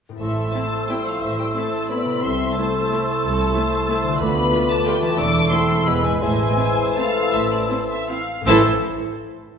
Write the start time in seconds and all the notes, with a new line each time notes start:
0.09 A2 C4 E4
0.15 A4
0.20 A1 A2 E3 A3 E4 A4 C5 E5 E6
0.53 A3 C4 E4 C5 A5
0.88 G3 C4 E4 G5
1.05 F3 F5
1.20 A1 A2 E3 E5
1.38 G3 G5
1.55 A3 C4 E4 A5
1.90 B3 C4 E4 D5 B5
2.05 C3
2.10 C4
2.14 E4
2.19 C4 A4 C5
2.23 C2 A3 E4 E5 C6 E6
2.57 A3 E4 C5 A5
2.92 A3 E4
3.24 C2 A4
3.56 A3 E4 C5
3.90 A3 E4 C5
4.03 D3
4.08 B3
4.12 F4
4.17 A4 B5 D6
4.21 D2 A3 B3 F4 B4
4.53 A3 F4
4.71 A3 A5
4.87 G3 A3 F4 G5
5.01 E3 A3 A5
5.06 A3
5.10 E4
5.15 D4 A4
5.19 E1 E2 E4 A4 D6 E6
5.51 A3 C4 E4 A4 C6
5.69 E3
5.74 G#3
5.78 E4
5.83 B3 B4
5.87 E1 E2 G#3 E4 B4 B5
6.04 A2 G#3 G#5
6.09 A3
6.13 E4
6.17 A2 G#3 C5 G#5
6.21 A1 E3 E4 C5 E6
6.58 C4 E4 C5
6.95 A3 C4 E4 F5 A5
7.32 A1 A2 E5
7.52 D5
7.70 C4 E4 C5
7.89 E5
8.09 C4 E4 F5
8.41 A2 A3
8.46 A1 A2 E3 A3 E4 A4 C5 A5 E6
8.52 E5